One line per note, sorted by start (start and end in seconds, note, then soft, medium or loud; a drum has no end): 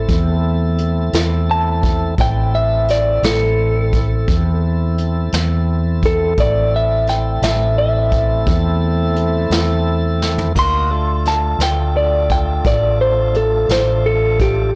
0.00 2.15 A3 medium
0.00 2.15 C4 medium
0.00 2.15 E4 medium
0.00 0.41 A4 medium
0.00 2.15 A4 medium
0.09 1.10 E2 medium
0.09 kick medium
0.09 closed hi-hat medium
0.78 closed hi-hat medium
1.13 2.15 E2 medium
1.13 snare medium
1.13 closed hi-hat medium
1.51 2.18 A5 medium
1.83 kick medium
1.83 closed hi-hat medium
2.18 3.19 A1 medium
2.18 6.34 C4 medium
2.18 6.34 E4 medium
2.18 6.33 A4 medium
2.18 2.54 G5 medium
2.18 kick medium
2.18 closed hi-hat medium
2.55 2.88 E5 medium
2.88 3.24 D5 medium
2.88 snare soft
2.88 closed hi-hat soft
3.23 4.24 A1 medium
3.23 4.60 A4 medium
3.23 snare medium
3.23 closed hi-hat medium
3.93 kick medium
3.93 closed hi-hat soft
4.28 5.29 E2 medium
4.28 kick medium
4.28 closed hi-hat medium
4.98 closed hi-hat medium
5.32 6.34 E2 medium
5.32 snare loud
5.32 closed hi-hat medium
6.03 6.38 A4 medium
6.03 kick medium
6.03 closed hi-hat medium
6.37 7.38 A1 medium
6.37 10.53 A3 medium
6.37 10.53 C4 medium
6.37 10.53 E4 medium
6.37 10.53 A4 medium
6.37 6.73 D5 medium
6.37 kick medium
6.37 closed hi-hat medium
6.76 7.08 E5 medium
7.07 7.42 G5 medium
7.07 snare soft
7.07 closed hi-hat medium
7.42 8.43 A1 medium
7.42 7.77 E5 medium
7.42 snare loud
7.42 closed hi-hat medium
7.78 8.45 E5 medium
8.11 kick medium
8.11 closed hi-hat medium
8.46 9.47 E2 medium
8.46 kick medium
8.46 closed hi-hat medium
9.16 closed hi-hat medium
9.50 10.52 E2 medium
9.50 snare medium
9.50 closed hi-hat medium
10.22 snare medium
10.38 floor tom medium
10.55 11.57 D2 medium
10.55 10.91 A#3 medium
10.55 10.91 D#4 medium
10.55 10.91 F#4 medium
10.55 10.91 A#4 medium
10.55 11.25 C6 medium
10.55 kick medium
10.55 closed hi-hat medium
10.55 splash medium
10.90 14.71 A3 medium
10.90 14.71 D4 medium
10.90 14.71 F4 medium
10.90 14.71 A4 medium
11.25 11.61 A5 medium
11.25 snare soft
11.25 closed hi-hat soft
11.59 12.60 D2 medium
11.59 snare loud
11.59 closed hi-hat medium
11.63 11.96 G5 medium
11.97 12.30 D5 medium
12.30 12.65 G5 medium
12.30 kick medium
12.30 closed hi-hat medium
12.65 13.66 A1 medium
12.65 13.00 D5 medium
12.65 kick medium
12.65 closed hi-hat medium
13.01 13.35 C5 medium
13.34 13.70 A4 medium
13.34 closed hi-hat medium
13.69 14.70 A1 medium
13.69 14.05 C5 medium
13.69 snare medium
13.69 closed hi-hat medium
14.06 14.40 A4 medium
14.39 14.75 G4 medium
14.39 kick medium
14.39 closed hi-hat medium